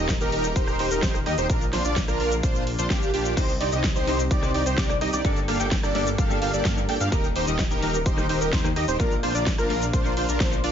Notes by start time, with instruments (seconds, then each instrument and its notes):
Already playing: detuned saw bass D#1, analog synth pad D#3 D#4 G4 A#4, supersaw synth D#4 G4 D#5, analog synth lead D#5
0.09 kick, snare, closed hi-hat, shaker
0.21 detuned saw bass D#1, supersaw synth D#4 G4 A#4, analog synth lead A#4, closed hi-hat, shaker
0.32 detuned saw bass D#1, supersaw synth D#4 G4 A#4, analog synth lead A#4, open hi-hat
0.44 closed hi-hat, shaker
0.56 detuned saw bass D#1, supersaw synth D#4 G4 C5, analog synth lead C5, kick, closed hi-hat, shaker
0.67 cross-stick, shaker
0.79 detuned saw bass D#1, supersaw synth D#4 G4 C5, analog synth lead C5, open hi-hat
0.91 detuned saw bass D#1, supersaw synth D#4 G4 A#4, analog synth lead A#4, closed hi-hat, shaker
1.02 detuned saw bass D#1, analog synth lead C5, supersaw synth C5, kick, snare, closed hi-hat, shaker
1.14 cross-stick, shaker
1.26 detuned saw bass D#2, supersaw synth D#4 G4 D#5, analog synth lead D#5, cross-stick, open hi-hat
1.38 detuned saw bass D#1, supersaw synth D#4 G4 C5, analog synth lead C5, closed hi-hat, shaker
1.50 detuned saw bass A#1, analog synth pad A#3 D4 F4, supersaw synth D4 F4 A#4, analog synth lead A#4, kick, closed hi-hat, shaker
1.61 closed hi-hat, shaker
1.73 detuned saw bass A#1, supersaw synth D4 F4 C5, analog synth lead C5, cross-stick, snare, open hi-hat
1.85 detuned saw bass A#1, supersaw synth D4 F4 D5, analog synth lead D5, closed hi-hat, shaker
1.96 kick, snare, closed hi-hat, shaker
2.08 detuned saw bass A#1, supersaw synth D4 F4 A#4, analog synth lead A#4, cross-stick, closed hi-hat, shaker
2.20 detuned saw bass A#1, supersaw synth D4 F4 A#4, analog synth lead A#4, open hi-hat
2.32 closed hi-hat, shaker
2.43 detuned saw bass A#1, supersaw synth D4 F4 C5, analog synth lead C5, kick, closed hi-hat, shaker
2.56 shaker
2.67 open hi-hat
2.79 detuned saw bass A#1, supersaw synth D4 F4 C5, analog synth lead C5, closed hi-hat, shaker
2.90 detuned saw bass A#1, supersaw synth D4 F4 G4, analog synth lead G4, kick, snare, closed hi-hat, shaker
3.02 closed hi-hat, shaker
3.13 detuned saw bass A#1, supersaw synth D4 F4 G4, analog synth lead G4, open hi-hat
3.25 closed hi-hat, shaker
3.36 detuned saw bass C2, clean electric guitar C3 C4 D#4 G4 C5, analog synth pad C3 C4 D#4 G4, supersaw synth D#4 G4 C5, analog synth lead C5, kick, closed hi-hat, crash, shaker
3.49 closed hi-hat, shaker
3.60 detuned saw bass C2, supersaw synth D#4 G4 D5, analog synth lead D5, open hi-hat
3.71 detuned saw bass C2, clean electric guitar C3 C4 D#4 G4 C5, supersaw synth D#4 G4 D#5, analog synth lead D#5, closed hi-hat, shaker
3.84 kick, snare, closed hi-hat, shaker
3.96 detuned saw bass C2, supersaw synth D#4 G4 C5, analog synth lead C5, closed hi-hat, shaker
4.07 detuned saw bass C2, clean electric guitar C3 C4 D#4 G4 C5, supersaw synth D#4 G4 C5, analog synth lead C5, open hi-hat
4.19 closed hi-hat, shaker
4.31 detuned saw bass C2, supersaw synth D#4 G4 D5, analog synth lead D5, kick, closed hi-hat, shaker
4.42 clean electric guitar C3 C4 D#4 G4 C5, cross-stick, shaker
4.54 detuned saw bass C2, supersaw synth D#4 G4 D5, analog synth lead D5, open hi-hat
4.66 detuned saw bass C2, supersaw synth D#4 G4 C5, analog synth lead C5, closed hi-hat, shaker
4.78 detuned saw bass C2, supersaw synth D#4 G4 D5, analog synth lead D5, kick, snare, closed hi-hat, shaker
4.89 clean electric guitar C3 C4 D#4 G4 D5, cross-stick, shaker
5.01 detuned saw bass C2, supersaw synth D#4 G4 D#5, analog synth lead D#5, cross-stick, open hi-hat
5.13 detuned saw bass C2, supersaw synth D#4 G4 D5, analog synth lead D5, closed hi-hat, shaker
5.24 detuned saw bass G1, clean electric guitar G2 A#3 D4 G4 A4, analog synth pad G3 A#3 D4 A4, supersaw synth A#3 D4 G4 A4 D5, analog synth lead D5, kick, closed hi-hat, shaker
5.36 closed hi-hat, shaker
5.48 detuned saw bass G1, supersaw synth A#3 D4 G4 A4 F5, analog synth lead F5, cross-stick, open hi-hat
5.59 detuned saw bass G1, clean electric guitar G2 A#3 D4 G4 A4, supersaw synth A#3 D4 G4 A4 G5, analog synth lead G5, closed hi-hat, shaker
5.71 kick, snare, closed hi-hat, shaker
5.83 detuned saw bass G1, supersaw synth A#3 D4 G4 A4 D5, analog synth lead D5, cross-stick, closed hi-hat, shaker
5.94 detuned saw bass G1, clean electric guitar G2 A#3 D4 G4 A4, supersaw synth A#3 D4 G4 A4 D5, analog synth lead D5, open hi-hat
6.07 closed hi-hat, shaker
6.18 detuned saw bass G1, supersaw synth A#3 D4 G4 A4 F5, analog synth lead F5, kick, closed hi-hat, shaker
6.29 clean electric guitar G2 A#3 D4 G4 A4, shaker
6.42 detuned saw bass G1, supersaw synth A#3 D4 G4 A4 F5, analog synth lead F5, open hi-hat
6.53 detuned saw bass G1, supersaw synth A#3 D4 G4 A4 D5, analog synth lead D5, closed hi-hat, shaker
6.65 detuned saw bass G2, supersaw synth A#3 D4 G4 A4 F5, analog synth lead F5, kick, snare, closed hi-hat, shaker
6.76 clean electric guitar G2 A#3 D4 G4 A#4, shaker
6.89 detuned saw bass G1, supersaw synth A#3 D4 G4 A4 G5, analog synth lead G5, open hi-hat
7.00 detuned saw bass G2, supersaw synth A#3 D4 G4 A4 F5, analog synth lead F5, closed hi-hat, shaker
7.12 detuned saw bass D#1, clean electric guitar D#3 A#3 D#4 G4 A#4, analog synth pad D#3 D#4 G4 A#4, supersaw synth D#4 G4 A#4, analog synth lead A#4, kick, closed hi-hat, shaker
7.24 closed hi-hat, shaker
7.36 detuned saw bass D#1, supersaw synth D#4 G4 C5, analog synth lead C5, open hi-hat
7.47 detuned saw bass D#1, clean electric guitar D#3 A#3 D#4 G4 A#4, supersaw synth D#4 G4 D#5, analog synth lead D#5, closed hi-hat, shaker
7.59 kick, snare, closed hi-hat, shaker
7.71 detuned saw bass D#1, supersaw synth D#4 G4 A#4, analog synth lead A#4, closed hi-hat, shaker
7.82 detuned saw bass D#1, clean electric guitar D#3 A#3 D#4 G4 A#4, supersaw synth D#4 G4 A#4, analog synth lead A#4, open hi-hat
7.94 closed hi-hat, shaker
8.06 detuned saw bass D#1, supersaw synth D#4 G4 C5, analog synth lead C5, kick, closed hi-hat, shaker
8.17 clean electric guitar D#3 A#3 D#4 G4 A#4, cross-stick, shaker
8.29 detuned saw bass D#1, supersaw synth D#4 G4 C5, analog synth lead C5, open hi-hat
8.41 detuned saw bass D#1, supersaw synth D#4 G4 A#4, analog synth lead A#4, closed hi-hat, shaker
8.53 detuned saw bass D#2, supersaw synth D#4 G4 C5, analog synth lead C5, kick, snare, closed hi-hat, shaker
8.64 clean electric guitar D#3 A#3 D#4 G4 C5, cross-stick, shaker
8.76 detuned saw bass D#2, supersaw synth D#4 G4 D#5, analog synth lead D#5, cross-stick, open hi-hat
8.88 detuned saw bass D#1, supersaw synth D#4 G4 C5, analog synth lead C5, closed hi-hat, shaker
8.99 detuned saw bass A#1, clean electric guitar A#2 A#3 D4 F4 A#4, analog synth pad A#3 D4 F4, supersaw synth D4 F4 A#4, analog synth lead A#4, kick, closed hi-hat, shaker
9.12 closed hi-hat, shaker
9.23 detuned saw bass A#1, supersaw synth D4 F4 C5, analog synth lead C5, cross-stick, open hi-hat
9.34 detuned saw bass A#1, clean electric guitar A#2 A#3 D4 F4 A#4, supersaw synth D4 F4 D5, analog synth lead D5, closed hi-hat, shaker
9.46 kick, snare, closed hi-hat, shaker
9.58 detuned saw bass A#1, supersaw synth D4 F4 A#4, analog synth lead A#4, cross-stick, closed hi-hat, shaker
9.69 detuned saw bass A#1, clean electric guitar A#2 A#3 D4 F4 A#4, supersaw synth D4 F4 A#4, analog synth lead A#4, open hi-hat
9.82 closed hi-hat, shaker
9.93 detuned saw bass A#1, supersaw synth D4 F4 C5, analog synth lead C5, kick, closed hi-hat, shaker
10.04 clean electric guitar A#2 A#3 D4 F4 A#4, shaker
10.17 detuned saw bass A#1, supersaw synth D4 F4 C5, analog synth lead C5, open hi-hat
10.29 detuned saw bass A#1, supersaw synth D4 F4 A#4, analog synth lead A#4, closed hi-hat, shaker
10.40 detuned saw bass A#1, supersaw synth D4 F4 C5, analog synth lead C5, kick, snare, closed hi-hat, shaker
10.51 clean electric guitar A#2 A#3 D4 F4 C5, closed hi-hat, shaker
10.64 detuned saw bass A#1, supersaw synth D4 F4 D5, analog synth lead D5, open hi-hat